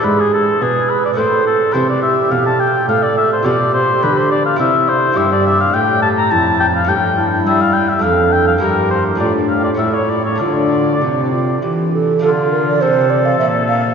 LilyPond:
<<
  \new Staff \with { instrumentName = "Oboe" } { \time 3/4 \key c \major \tempo 4 = 104 b'16 gis'16 a'8 gis'8 b'16 d''16 c''8 a'8 | c''16 d''16 e''8 f''16 a''16 g''8 f''16 d''16 e''16 c''16 | d''8 c''8 b'16 c''16 d''16 f''16 e''8 c''8 | \key d \minor e''16 d''16 e''16 f''16 g''8 a''16 bes''16 a''8 g''16 f''16 |
g''8. r16 e''16 f''16 g''16 e''16 f''8 g''16 f''16 | bes'8 c''8 d''8 f''16 d''16 e''16 cis''16 d''16 cis''16 | d''2 r4 | f'4 a'2 | }
  \new Staff \with { instrumentName = "Flute" } { \time 3/4 \key c \major gis'4 b'4 a'4 | g'2 a'4 | g'2 e'4 | \key d \minor g'4. r8 e'4 |
g'8 e'4. a'4 | g'4 f'4 e'4 | f'4 d'8 f'8 g'8 a'8 | a'8 bes'16 d''16 c''8 d''16 f''16 e''8 f''8 | }
  \new Staff \with { instrumentName = "Lute" } { \time 3/4 \key c \major <b d' e'>2 <a c' e'>4 | <c' e'>2. | <f' g'>2 <e' g'>4 | \key d \minor <bes e' g'>2. |
<a cis' a'>2 <a d' a'>4 | <bes e' g'>4 <a d' f'>4 <a cis' g'>4 | <a d' f'>2. | <a d' f'>2. | }
  \new Staff \with { instrumentName = "Lute" } { \clef bass \time 3/4 \key c \major gis,4 b,4 a,4 | c4 b,4 a,4 | b,4 d4 c4 | \key d \minor g,4 a,4 f,4 |
g,4 g4 f,4 | g,4 a,4 a,4 | d4 c4 e4 | d4 c4 bes,4 | }
  \new Staff \with { instrumentName = "Cello" } { \clef bass \time 3/4 \key c \major gis,4 b,4 a,4 | c4 b,4 a,4 | b,4 d4 c4 | \key d \minor g,4 a,4 f,4 |
g,4 g4 f,4 | g,4 a,4 a,4 | d4 c4 e4 | d4 c4 bes,4 | }
>>